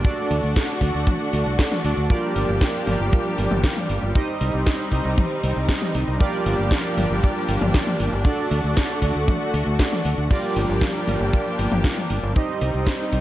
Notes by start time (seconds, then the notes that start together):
Already playing: D4
0.05 A3 D4 F#4 A4 D5, kick, closed hi-hat
0.18 closed hi-hat
0.31 D2, open hi-hat
0.43 D2, closed hi-hat
0.56 kick, snare, closed hi-hat
0.69 closed hi-hat
0.81 D2 D4 F#4 A4 D5, kick, open hi-hat
0.95 D2, closed hi-hat
1.07 kick, closed hi-hat, high tom
1.20 closed hi-hat
1.33 D2, open hi-hat
1.46 C2, closed hi-hat
1.59 kick, snare, closed hi-hat
1.72 snare, closed hi-hat, high tom
1.84 D2 D4 F#4 A4 D5, open hi-hat
1.97 D2, closed hi-hat
2.10 F3 G3 A#3 F4 G4 A#4 D5, kick, closed hi-hat
2.23 closed hi-hat
2.36 G1, open hi-hat
2.49 G1, closed hi-hat
2.61 kick, snare, closed hi-hat
2.74 closed hi-hat
2.87 G1 F4 G4 A#4 D5, open hi-hat, high tom
3.00 G1, closed hi-hat
3.13 kick, closed hi-hat
3.25 closed hi-hat
3.38 G1, open hi-hat
3.51 G1, closed hi-hat, high tom
3.64 kick, snare, closed hi-hat
3.77 closed hi-hat, high tom
3.89 G1, open hi-hat
4.02 G1, closed hi-hat
4.15 C4 D#4 G4 C5 D#5, kick, closed hi-hat
4.28 closed hi-hat
4.41 C2, open hi-hat
4.54 C2, closed hi-hat
4.66 kick, snare, closed hi-hat
4.79 closed hi-hat
4.92 C2 D#4 G4 C5 D#5, kick, open hi-hat
5.05 C2, closed hi-hat
5.18 kick, closed hi-hat, high tom
5.31 closed hi-hat
5.43 C2, open hi-hat
5.56 C2, closed hi-hat
5.69 kick, snare, closed hi-hat
5.82 snare, closed hi-hat, high tom
5.95 C2, open hi-hat
6.08 C2, closed hi-hat
6.20 F3 A#3 D4 F4 G4 A#4 D5, kick, closed hi-hat
6.33 closed hi-hat
6.46 G1, open hi-hat
6.59 G1, closed hi-hat
6.71 kick, snare, closed hi-hat
6.85 closed hi-hat
6.97 G1 F4 G4 A#4 D5, open hi-hat, high tom
7.10 G1, closed hi-hat
7.23 kick, closed hi-hat
7.36 closed hi-hat
7.48 G1, open hi-hat
7.61 G1, closed hi-hat, high tom
7.74 kick, snare, closed hi-hat
7.87 closed hi-hat, high tom
8.00 G1, open hi-hat
8.13 G1, closed hi-hat
8.25 A3 D4 F#4 A4 D5, kick, closed hi-hat
8.38 closed hi-hat
8.51 D2, open hi-hat
8.64 D2, closed hi-hat
8.77 kick, snare, closed hi-hat
8.90 closed hi-hat
9.02 D2 D4 F#4 A4 D5, kick, open hi-hat
9.15 D2, closed hi-hat
9.28 kick, closed hi-hat, high tom
9.41 closed hi-hat
9.54 D2, open hi-hat
9.67 D2, closed hi-hat
9.79 kick, snare, closed hi-hat
9.92 snare, closed hi-hat, high tom
10.05 D2, open hi-hat
10.18 D2, closed hi-hat
10.31 F3 G3 A#3 D4 F4 G4 A#4 D5, kick, closed hi-hat, crash
10.43 closed hi-hat
10.56 G1, open hi-hat
10.69 G1, closed hi-hat
10.81 kick, snare, closed hi-hat
10.95 closed hi-hat
11.07 G1 F4 G4 A#4 D5, open hi-hat, high tom
11.20 G1, closed hi-hat
11.33 kick, closed hi-hat
11.46 closed hi-hat
11.59 G1, open hi-hat
11.72 G1, closed hi-hat, high tom
11.84 kick, snare, closed hi-hat
11.97 closed hi-hat, high tom
12.10 G1, open hi-hat
12.23 G1, closed hi-hat
12.36 G3 C4 D#4 G4 C5 D#5, kick, closed hi-hat
12.48 closed hi-hat
12.61 C2, open hi-hat
12.74 C2, closed hi-hat
12.87 kick, snare, closed hi-hat
13.00 closed hi-hat
13.13 C2 D#4 G4 C5 D#5, kick, open hi-hat